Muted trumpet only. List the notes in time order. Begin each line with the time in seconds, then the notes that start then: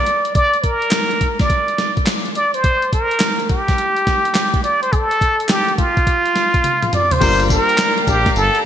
Already playing: D5
0.35 D5
0.64 A#4
1.40 D5
2.36 D5
2.55 C5
2.93 A#4
3.50 G4
4.64 D5
4.82 C5
4.92 A4
5.49 G4
5.78 F4
6.95 D5
7.12 C5
7.51 A#4
8.08 G4
8.37 A4